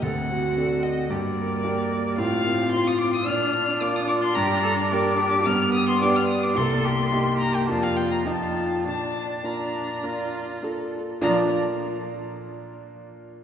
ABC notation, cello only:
X:1
M:4/4
L:1/8
Q:1/4=108
K:Bb
V:1 name="Cello"
A ^F3 G B3 | F4 D2 F2 | G A B G =B,2 D2 | A G3 F2 F2 |
D6- D z | F, z6 z |]